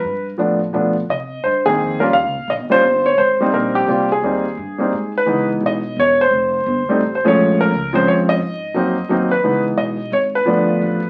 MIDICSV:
0, 0, Header, 1, 4, 480
1, 0, Start_track
1, 0, Key_signature, -4, "major"
1, 0, Tempo, 347423
1, 65, Time_signature, 3, 2, 24, 8
1, 15334, End_track
2, 0, Start_track
2, 0, Title_t, "Grand piano"
2, 0, Program_c, 0, 0
2, 0, Note_on_c, 0, 71, 65
2, 348, Note_off_c, 0, 71, 0
2, 520, Note_on_c, 0, 53, 50
2, 524, Note_on_c, 0, 57, 48
2, 535, Note_on_c, 0, 59, 42
2, 541, Note_on_c, 0, 62, 58
2, 807, Note_off_c, 0, 53, 0
2, 809, Note_off_c, 0, 57, 0
2, 814, Note_off_c, 0, 59, 0
2, 817, Note_off_c, 0, 62, 0
2, 1009, Note_on_c, 0, 53, 52
2, 1018, Note_on_c, 0, 59, 49
2, 1019, Note_on_c, 0, 57, 51
2, 1028, Note_on_c, 0, 62, 62
2, 1292, Note_off_c, 0, 53, 0
2, 1297, Note_off_c, 0, 57, 0
2, 1297, Note_off_c, 0, 59, 0
2, 1302, Note_off_c, 0, 62, 0
2, 1522, Note_on_c, 0, 75, 88
2, 1985, Note_on_c, 0, 72, 74
2, 2012, Note_off_c, 0, 75, 0
2, 2271, Note_off_c, 0, 72, 0
2, 2288, Note_on_c, 0, 68, 89
2, 2289, Note_on_c, 0, 51, 53
2, 2300, Note_on_c, 0, 58, 45
2, 2312, Note_on_c, 0, 60, 45
2, 2313, Note_on_c, 0, 63, 54
2, 2740, Note_off_c, 0, 68, 0
2, 2744, Note_off_c, 0, 51, 0
2, 2750, Note_off_c, 0, 58, 0
2, 2756, Note_off_c, 0, 60, 0
2, 2756, Note_off_c, 0, 63, 0
2, 2764, Note_on_c, 0, 70, 73
2, 2770, Note_on_c, 0, 55, 57
2, 2777, Note_on_c, 0, 58, 54
2, 2783, Note_on_c, 0, 65, 65
2, 2785, Note_on_c, 0, 61, 55
2, 2834, Note_off_c, 0, 70, 0
2, 2934, Note_off_c, 0, 55, 0
2, 2938, Note_off_c, 0, 58, 0
2, 2941, Note_off_c, 0, 65, 0
2, 2942, Note_off_c, 0, 61, 0
2, 2947, Note_on_c, 0, 77, 89
2, 3448, Note_off_c, 0, 77, 0
2, 3452, Note_on_c, 0, 75, 85
2, 3521, Note_off_c, 0, 75, 0
2, 3725, Note_on_c, 0, 55, 61
2, 3733, Note_on_c, 0, 58, 50
2, 3741, Note_on_c, 0, 61, 53
2, 3743, Note_on_c, 0, 65, 66
2, 3754, Note_on_c, 0, 72, 104
2, 3893, Note_off_c, 0, 55, 0
2, 3897, Note_off_c, 0, 58, 0
2, 3902, Note_off_c, 0, 61, 0
2, 3903, Note_off_c, 0, 65, 0
2, 4224, Note_on_c, 0, 73, 82
2, 4244, Note_off_c, 0, 72, 0
2, 4393, Note_on_c, 0, 72, 82
2, 4407, Note_off_c, 0, 73, 0
2, 4701, Note_on_c, 0, 55, 60
2, 4705, Note_on_c, 0, 58, 54
2, 4720, Note_on_c, 0, 60, 57
2, 4724, Note_on_c, 0, 63, 64
2, 4887, Note_on_c, 0, 70, 74
2, 4893, Note_off_c, 0, 72, 0
2, 5167, Note_off_c, 0, 70, 0
2, 5185, Note_on_c, 0, 67, 85
2, 5326, Note_off_c, 0, 55, 0
2, 5328, Note_off_c, 0, 58, 0
2, 5336, Note_off_c, 0, 60, 0
2, 5338, Note_off_c, 0, 63, 0
2, 5356, Note_on_c, 0, 55, 49
2, 5365, Note_on_c, 0, 58, 47
2, 5365, Note_on_c, 0, 60, 44
2, 5376, Note_on_c, 0, 65, 55
2, 5633, Note_off_c, 0, 55, 0
2, 5633, Note_off_c, 0, 67, 0
2, 5637, Note_off_c, 0, 60, 0
2, 5638, Note_off_c, 0, 58, 0
2, 5643, Note_off_c, 0, 65, 0
2, 5692, Note_on_c, 0, 68, 79
2, 5852, Note_on_c, 0, 55, 54
2, 5860, Note_on_c, 0, 58, 48
2, 5871, Note_on_c, 0, 60, 49
2, 5875, Note_on_c, 0, 63, 55
2, 6121, Note_off_c, 0, 55, 0
2, 6125, Note_off_c, 0, 58, 0
2, 6131, Note_off_c, 0, 60, 0
2, 6133, Note_off_c, 0, 63, 0
2, 6608, Note_on_c, 0, 55, 53
2, 6620, Note_on_c, 0, 58, 51
2, 6629, Note_on_c, 0, 60, 50
2, 6641, Note_on_c, 0, 63, 58
2, 6778, Note_off_c, 0, 55, 0
2, 6784, Note_off_c, 0, 58, 0
2, 6788, Note_off_c, 0, 60, 0
2, 6795, Note_off_c, 0, 63, 0
2, 7066, Note_off_c, 0, 68, 0
2, 7150, Note_on_c, 0, 71, 78
2, 7267, Note_on_c, 0, 52, 56
2, 7275, Note_on_c, 0, 56, 54
2, 7284, Note_on_c, 0, 59, 52
2, 7295, Note_on_c, 0, 63, 61
2, 7577, Note_off_c, 0, 71, 0
2, 7820, Note_on_c, 0, 75, 89
2, 7999, Note_off_c, 0, 52, 0
2, 8003, Note_off_c, 0, 56, 0
2, 8007, Note_off_c, 0, 59, 0
2, 8013, Note_off_c, 0, 63, 0
2, 8283, Note_on_c, 0, 73, 91
2, 8286, Note_off_c, 0, 75, 0
2, 8575, Note_off_c, 0, 73, 0
2, 8583, Note_on_c, 0, 72, 88
2, 9520, Note_on_c, 0, 55, 65
2, 9522, Note_on_c, 0, 57, 55
2, 9536, Note_on_c, 0, 60, 55
2, 9545, Note_on_c, 0, 63, 67
2, 9673, Note_off_c, 0, 55, 0
2, 9674, Note_off_c, 0, 57, 0
2, 9680, Note_off_c, 0, 60, 0
2, 9685, Note_off_c, 0, 63, 0
2, 9826, Note_off_c, 0, 72, 0
2, 9881, Note_on_c, 0, 72, 71
2, 9995, Note_off_c, 0, 72, 0
2, 10010, Note_on_c, 0, 56, 62
2, 10011, Note_on_c, 0, 53, 66
2, 10017, Note_on_c, 0, 57, 61
2, 10026, Note_on_c, 0, 61, 74
2, 10054, Note_on_c, 0, 73, 85
2, 10468, Note_off_c, 0, 73, 0
2, 10509, Note_on_c, 0, 70, 92
2, 10618, Note_off_c, 0, 56, 0
2, 10619, Note_off_c, 0, 53, 0
2, 10622, Note_off_c, 0, 57, 0
2, 10626, Note_off_c, 0, 61, 0
2, 10955, Note_on_c, 0, 53, 64
2, 10959, Note_on_c, 0, 56, 59
2, 10964, Note_on_c, 0, 60, 56
2, 10977, Note_on_c, 0, 61, 66
2, 10979, Note_off_c, 0, 70, 0
2, 10988, Note_on_c, 0, 72, 93
2, 11147, Note_off_c, 0, 72, 0
2, 11163, Note_on_c, 0, 73, 90
2, 11232, Note_off_c, 0, 73, 0
2, 11453, Note_on_c, 0, 75, 106
2, 11569, Note_off_c, 0, 53, 0
2, 11571, Note_off_c, 0, 56, 0
2, 11574, Note_off_c, 0, 60, 0
2, 11581, Note_off_c, 0, 61, 0
2, 12081, Note_on_c, 0, 54, 60
2, 12095, Note_on_c, 0, 58, 53
2, 12099, Note_on_c, 0, 60, 52
2, 12108, Note_on_c, 0, 63, 64
2, 12351, Note_off_c, 0, 54, 0
2, 12358, Note_off_c, 0, 58, 0
2, 12360, Note_off_c, 0, 60, 0
2, 12365, Note_off_c, 0, 63, 0
2, 12562, Note_on_c, 0, 54, 59
2, 12577, Note_on_c, 0, 58, 55
2, 12582, Note_on_c, 0, 60, 54
2, 12584, Note_on_c, 0, 63, 67
2, 12818, Note_off_c, 0, 75, 0
2, 12831, Note_off_c, 0, 54, 0
2, 12838, Note_off_c, 0, 58, 0
2, 12841, Note_off_c, 0, 60, 0
2, 12842, Note_off_c, 0, 63, 0
2, 12868, Note_on_c, 0, 71, 77
2, 13035, Note_on_c, 0, 52, 49
2, 13042, Note_on_c, 0, 56, 45
2, 13045, Note_on_c, 0, 59, 48
2, 13059, Note_on_c, 0, 63, 55
2, 13309, Note_off_c, 0, 71, 0
2, 13505, Note_on_c, 0, 75, 84
2, 13755, Note_off_c, 0, 52, 0
2, 13759, Note_off_c, 0, 56, 0
2, 13760, Note_off_c, 0, 59, 0
2, 13767, Note_off_c, 0, 63, 0
2, 13954, Note_off_c, 0, 75, 0
2, 13998, Note_on_c, 0, 73, 82
2, 14067, Note_off_c, 0, 73, 0
2, 14303, Note_on_c, 0, 71, 84
2, 14446, Note_on_c, 0, 53, 64
2, 14456, Note_on_c, 0, 57, 53
2, 14458, Note_on_c, 0, 59, 53
2, 14467, Note_on_c, 0, 62, 69
2, 15178, Note_off_c, 0, 53, 0
2, 15183, Note_off_c, 0, 57, 0
2, 15184, Note_off_c, 0, 59, 0
2, 15188, Note_off_c, 0, 62, 0
2, 15334, Note_off_c, 0, 71, 0
2, 15334, End_track
3, 0, Start_track
3, 0, Title_t, "Upright bass"
3, 0, Program_c, 1, 32
3, 55, Note_on_c, 1, 43, 74
3, 527, Note_off_c, 1, 43, 0
3, 546, Note_on_c, 1, 45, 80
3, 1014, Note_off_c, 1, 45, 0
3, 1022, Note_on_c, 1, 47, 72
3, 1493, Note_off_c, 1, 47, 0
3, 1508, Note_on_c, 1, 48, 70
3, 1977, Note_off_c, 1, 48, 0
3, 2001, Note_on_c, 1, 43, 78
3, 2464, Note_off_c, 1, 43, 0
3, 2477, Note_on_c, 1, 41, 81
3, 2932, Note_off_c, 1, 41, 0
3, 2940, Note_on_c, 1, 39, 76
3, 3099, Note_off_c, 1, 39, 0
3, 3099, Note_on_c, 1, 37, 53
3, 3250, Note_off_c, 1, 37, 0
3, 3259, Note_on_c, 1, 34, 54
3, 3413, Note_off_c, 1, 34, 0
3, 3421, Note_on_c, 1, 34, 82
3, 3595, Note_off_c, 1, 34, 0
3, 3595, Note_on_c, 1, 31, 50
3, 3747, Note_off_c, 1, 31, 0
3, 3755, Note_on_c, 1, 27, 55
3, 3902, Note_off_c, 1, 27, 0
3, 3910, Note_on_c, 1, 31, 73
3, 4377, Note_off_c, 1, 31, 0
3, 4386, Note_on_c, 1, 32, 75
3, 4852, Note_off_c, 1, 32, 0
3, 4860, Note_on_c, 1, 34, 85
3, 5329, Note_off_c, 1, 34, 0
3, 5338, Note_on_c, 1, 36, 81
3, 5817, Note_off_c, 1, 36, 0
3, 5834, Note_on_c, 1, 39, 78
3, 6305, Note_off_c, 1, 39, 0
3, 6318, Note_on_c, 1, 43, 80
3, 6787, Note_off_c, 1, 43, 0
3, 6808, Note_on_c, 1, 44, 78
3, 7272, Note_off_c, 1, 44, 0
3, 7286, Note_on_c, 1, 37, 75
3, 7743, Note_off_c, 1, 37, 0
3, 7752, Note_on_c, 1, 35, 83
3, 8224, Note_off_c, 1, 35, 0
3, 8240, Note_on_c, 1, 28, 79
3, 8708, Note_off_c, 1, 28, 0
3, 8715, Note_on_c, 1, 29, 74
3, 9185, Note_off_c, 1, 29, 0
3, 9203, Note_on_c, 1, 31, 88
3, 9485, Note_off_c, 1, 31, 0
3, 9681, Note_on_c, 1, 33, 84
3, 10147, Note_off_c, 1, 33, 0
3, 10162, Note_on_c, 1, 34, 76
3, 10627, Note_off_c, 1, 34, 0
3, 10651, Note_on_c, 1, 37, 85
3, 11111, Note_off_c, 1, 37, 0
3, 11121, Note_on_c, 1, 41, 83
3, 11585, Note_off_c, 1, 41, 0
3, 11600, Note_on_c, 1, 44, 76
3, 12064, Note_off_c, 1, 44, 0
3, 12078, Note_on_c, 1, 41, 81
3, 12542, Note_off_c, 1, 41, 0
3, 12549, Note_on_c, 1, 39, 77
3, 13016, Note_off_c, 1, 39, 0
3, 13030, Note_on_c, 1, 37, 77
3, 13496, Note_off_c, 1, 37, 0
3, 13507, Note_on_c, 1, 35, 85
3, 13974, Note_off_c, 1, 35, 0
3, 13980, Note_on_c, 1, 32, 83
3, 14450, Note_off_c, 1, 32, 0
3, 14457, Note_on_c, 1, 31, 82
3, 14927, Note_off_c, 1, 31, 0
3, 14943, Note_on_c, 1, 33, 85
3, 15334, Note_off_c, 1, 33, 0
3, 15334, End_track
4, 0, Start_track
4, 0, Title_t, "Muted upright bass strokes"
4, 9506, Note_on_c, 9, 29, 34
4, 9644, Note_off_c, 9, 29, 0
4, 15334, End_track
0, 0, End_of_file